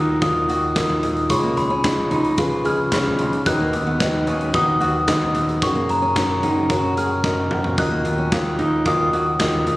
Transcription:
Already playing: picked electric bass D#2, upright piano A#2 D#4 F4 F#4 A#4, analog synth pad D#3 F#3 A#3 D#4 A#4, steel-string acoustic guitar D#4
0.22 picked electric bass D#2, upright piano D#4 F4 F#4 A#4, steel-string acoustic guitar F4, glockenspiel D#6, kick, closed hi-hat
0.49 picked electric bass D#2, steel-string acoustic guitar F#4, closed hi-hat
0.76 picked electric bass D#2, upright piano D#4 F4 F#4 A#4, kick, snare, clap, closed hi-hat
0.90 floor tom
1.03 picked electric bass D#2, closed hi-hat, floor tom
1.17 closed hi-hat
1.30 picked electric bass C#2, upright piano G#2 C#4 F4 G#4 C#5, analog synth pad C#3 F3 G#3 G#4, glockenspiel C#6, kick, closed hi-hat
1.43 steel-string acoustic guitar A#3
1.57 picked electric bass C#2, glockenspiel B5, closed hi-hat, floor tom
1.70 steel-string acoustic guitar C#4
1.84 picked electric bass C#2, upright piano C#4 F4 G#4 D#5, kick, snare, clap, closed hi-hat
2.11 picked electric bass C#2, steel-string acoustic guitar D#4, closed hi-hat, floor tom
2.25 closed hi-hat
2.38 picked electric bass C#2, upright piano C#4 F4 G#4 B4, steel-string acoustic guitar F4, kick, closed hi-hat
2.65 picked electric bass C#2, steel-string acoustic guitar G#4, glockenspiel F6, closed hi-hat
2.92 picked electric bass C#2, upright piano C#4 F4 G#4 C#5, kick, snare, clap, closed hi-hat
3.06 floor tom
3.19 picked electric bass C#2, closed hi-hat, floor tom
3.33 closed hi-hat
3.46 picked electric bass D#2, analog synth pad D#3 F#3 B3 F#4 B4, upright piano D#3 D#4 F#4 B4 D#5, glockenspiel F#6, kick, closed hi-hat
3.60 steel-string acoustic guitar A#3
3.73 picked electric bass D#2, closed hi-hat, floor tom
3.87 steel-string acoustic guitar B3
4.00 picked electric bass D#2, upright piano D#4 F#4 B4 D#5, kick, snare, clap, closed hi-hat
4.27 picked electric bass D#2, steel-string acoustic guitar C#4, closed hi-hat, floor tom
4.41 closed hi-hat
4.54 picked electric bass D#2, steel-string acoustic guitar D#4, upright piano D#4 F#4 B4 F#5, glockenspiel D#6, kick, closed hi-hat
4.80 picked electric bass D#2, steel-string acoustic guitar F#4, closed hi-hat
5.07 picked electric bass D#2, upright piano D#4 F#4 B4 D#5, kick, snare, clap, closed hi-hat
5.22 floor tom
5.35 picked electric bass D#2, closed hi-hat, floor tom
5.49 closed hi-hat
5.62 picked electric bass F#1, upright piano C#3 C#4 F#4 A#4 C#5, analog synth pad C#3 A#3 C#4 A#4, glockenspiel C#6, kick, closed hi-hat
5.75 steel-string acoustic guitar A#3
5.89 picked electric bass F#1, glockenspiel A#5, closed hi-hat
6.02 steel-string acoustic guitar C#4
6.15 picked electric bass F#1, upright piano C#4 F#4 A#4 C#5, kick, snare, clap, closed hi-hat
6.43 picked electric bass F#1, steel-string acoustic guitar D#4, closed hi-hat, floor tom
6.69 picked electric bass F#1, upright piano C#4 F#4 A#4 C#5, steel-string acoustic guitar F#4, kick, closed hi-hat
6.97 picked electric bass F#1, steel-string acoustic guitar G#4, glockenspiel F6, closed hi-hat
7.23 picked electric bass F#1, upright piano C#4 F#4 A#4 D#5, kick, snare
7.51 picked electric bass F#1, mid tom
7.64 floor tom
7.78 picked electric bass D#2, upright piano A#2 F4 F#4 A#4 D#5, analog synth pad D#3 A#3 D#4, glockenspiel F#6, kick, splash
7.91 steel-string acoustic guitar A#3
8.05 picked electric bass D#2, closed hi-hat, floor tom
8.18 steel-string acoustic guitar C#4
8.32 picked electric bass D#2, upright piano F4 F#4 A#4 F5, kick, snare, clap, closed hi-hat
8.59 picked electric bass D#2, steel-string acoustic guitar D#4, closed hi-hat, floor tom
8.85 picked electric bass D#2, upright piano F4 F#4 A#4 D#5, steel-string acoustic guitar F4, glockenspiel D#6, kick, closed hi-hat
9.13 picked electric bass D#2, steel-string acoustic guitar F#4, closed hi-hat
9.40 picked electric bass D#2, upright piano F4 F#4 A#4 D#5, kick, snare, clap, closed hi-hat
9.54 floor tom
9.66 picked electric bass D#2, closed hi-hat, floor tom

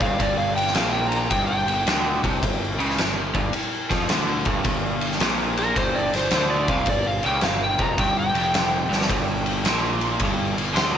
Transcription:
0.00 picked electric bass G1, overdriven electric guitar G2, electric slide guitar F5, kick, ride
0.19 picked electric bass G1, overdriven electric guitar G2, electric slide guitar D5, kick, ride
0.38 electric slide guitar F5
0.56 electric slide guitar G5, ride
0.67 snare
0.75 picked electric bass A#1, overdriven electric guitar A#2, electric slide guitar F5, snare, ride
0.93 electric slide guitar G5
1.09 electric slide guitar A#5, ride
1.30 picked electric bass G1, overdriven electric guitar G2, electric slide guitar G5, kick, ride
1.47 electric slide guitar G5
1.67 picked electric bass G1, overdriven electric guitar G2, ride
1.85 picked electric bass D2, overdriven electric guitar D3, snare, ride
2.23 picked electric bass C2, overdriven electric guitar C3, kick, ride
2.43 picked electric bass G1, overdriven electric guitar G2, kick, ride
2.77 picked electric bass C#2, overdriven electric guitar C#3, ride
2.90 snare
2.96 picked electric bass G1, overdriven electric guitar G2, snare, ride
3.35 picked electric bass G1, overdriven electric guitar G2, kick, ride
3.52 muted picked electric bass stroke, muted overdriven electric guitar stroke, ride
3.90 picked electric bass F2, overdriven electric guitar F3, kick, snare, ride
4.09 picked electric bass D2, overdriven electric guitar D3, snare, ride
4.45 picked electric bass G1, overdriven electric guitar G2, kick, ride
4.64 picked electric bass G1, overdriven electric guitar G2, kick, ride
5.01 ride
5.12 snare
5.20 picked electric bass A#1, overdriven electric guitar A#2, snare, ride
5.57 electric slide guitar A#4, ride
5.76 picked electric bass G1, overdriven electric guitar G2, electric slide guitar C5, kick, ride
5.95 electric slide guitar D5
6.13 picked electric bass G1, overdriven electric guitar G2, electric slide guitar C5, snare, ride
6.31 picked electric bass D2, overdriven electric guitar D3, electric slide guitar C5, snare, ride
6.50 electric slide guitar D5
6.68 picked electric bass C2, overdriven electric guitar C3, electric slide guitar F5, kick, ride
6.86 picked electric bass G1, overdriven electric guitar G2, electric slide guitar D5, kick, ride
7.07 electric slide guitar F5
7.23 picked electric bass C#2, overdriven electric guitar C#3, electric slide guitar G5, ride
7.41 picked electric bass G1, overdriven electric guitar G2, electric slide guitar F5, snare, ride
7.64 electric slide guitar G5
7.78 picked electric bass F1, overdriven electric guitar F2, electric slide guitar A#5, kick, ride
7.98 picked electric bass G1, overdriven electric guitar G2, electric slide guitar G5, kick, ride
8.19 electric slide guitar G5
8.33 picked electric bass F1, overdriven electric guitar F2, ride
8.54 snare, ride
8.89 picked electric bass G1, overdriven electric guitar G2, snare
9.01 snare
9.09 picked electric bass G1, overdriven electric guitar G2, kick, ride
9.46 ride
9.64 picked electric bass A#1, overdriven electric guitar A#2, snare, ride
10.01 ride
10.20 picked electric bass G1, overdriven electric guitar G2, kick, ride
10.57 picked electric bass G1, overdriven electric guitar G2, ride
10.74 picked electric bass D2, overdriven electric guitar D3, electric slide guitar C6, snare, ride

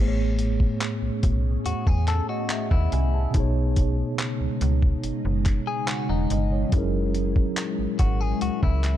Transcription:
Already playing: fm bass A1, tine electric piano A2 A3 B3, ambient pad A3 C#4 G#4
0.00 tine electric piano G#4 C5
0.08 tine electric piano C#5
0.39 closed hi-hat
0.60 kick
0.81 clap, closed hi-hat
1.02 fm bass B1
1.23 fm bass B1, kick, closed hi-hat
1.66 fm bass E2, clean electric guitar F#4, closed hi-hat
1.87 fm bass E2, clean electric guitar G#4, kick
2.08 clean electric guitar A4, clap, closed hi-hat
2.29 clean electric guitar F#4, tine electric piano D#5
2.50 tine electric piano E5, clap, closed hi-hat
2.71 fm bass D#2, clean electric guitar E4, tine electric piano F#5, kick
2.92 fm bass C2, tine electric piano G#5, closed hi-hat
3.14 tine electric piano A5
3.31 fm bass B1, tine electric piano B2 B3, ambient pad D#4, kick, closed hi-hat
3.35 ambient pad C#3 G#3, tine electric piano D#4 G#4
3.40 tine electric piano C#5
3.76 kick, closed hi-hat
4.19 clap, closed hi-hat
4.41 fm bass C#2
4.61 fm bass C#2, closed hi-hat
4.82 kick
5.04 fm bass F#1, closed hi-hat
5.25 fm bass F#1
5.46 kick, clap, closed hi-hat
5.67 clean electric guitar G#4
5.88 clean electric guitar F#4, tine electric piano G#5, clap, closed hi-hat
6.09 fm bass E1, clean electric guitar D#4, tine electric piano F#5
6.30 fm bass G1, tine electric piano D#5, closed hi-hat
6.52 tine electric piano C#5
6.69 fm bass F#1, ambient pad A#2 E4, tine electric piano F#3 C#4, kick, closed hi-hat
6.73 tine electric piano E4 G#4
6.78 tine electric piano A#4
7.15 closed hi-hat
7.36 kick
7.57 clap, closed hi-hat
7.79 fm bass G#1
7.99 fm bass G#1, clean electric guitar F#4, kick, closed hi-hat
8.21 clean electric guitar G#4
8.41 fm bass C#2, clean electric guitar F#4, closed hi-hat
8.63 fm bass C#2, clean electric guitar E4, kick
8.84 clap, closed hi-hat

